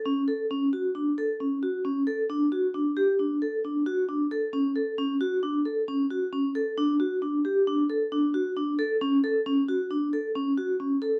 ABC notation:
X:1
M:5/4
L:1/8
Q:1/4=134
K:D
V:1 name="Vibraphone"
C A C F D A C F C A | D F D G D A D F D A | C A C F D A C F C A | D F D G D A D F D A |
C A C F D A C F C A |]